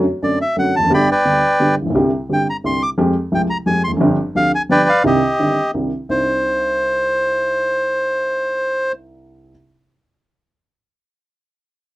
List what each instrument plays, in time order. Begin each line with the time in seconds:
0.22 upright piano F#2 D3 F#3 A3 C4 F#4, bandoneon D5
0.41 bandoneon E5
0.56 upright piano F#2 D3 F#3 A3 C4 F#4, bandoneon F#5
0.76 upright piano E2, bandoneon A5
0.82 upright piano F2 F#2
0.90 upright piano G1 G2 D3 G3 B3 G4, bandoneon B5
0.94 bandoneon D5 G5
1.11 bandoneon B4 D5 G5
1.25 upright piano D2 D3 G3 B3 G4
1.59 upright piano G1 G2 D3 G3 B3 G4
1.82 upright piano A1
1.86 upright piano A#1 B1
1.95 upright piano C2 C3 D3 G3 C4 G4
2.29 upright piano G1 G2 D3 G3 C4 G4, bandoneon G5
2.50 bandoneon A#5
2.64 upright piano C2 C3 D3 G3 C4 G4, bandoneon C6
2.83 bandoneon D6
2.98 upright piano F2 F3 G#3 C4 G4
3.32 upright piano C2 C3 F3 G#3 C4 G4, bandoneon G5
3.50 bandoneon A#5
3.66 upright piano F2 F3 G#3 C4 G4, bandoneon G#5
3.84 upright piano E2, bandoneon C6
3.92 upright piano F2
3.97 upright piano F#2 G2 F3 D4
4.01 upright piano G1 C4 G4
4.35 upright piano D2 D3 F3 C4 D4 G4, bandoneon F5
4.55 bandoneon G#5
4.69 upright piano G1 G2 F3 B3 D4 G4, bandoneon B4 D5 G5
4.89 bandoneon F5
5.03 upright piano C2 C3 D#3 C4 D4 G4, bandoneon G4 D#5
5.39 upright piano G1 G2 D#3 C4 D4 G4
5.74 upright piano C2 C3 D#3 C4 D4 G4
6.09 upright piano C2 C4 D4 D#4, bandoneon C5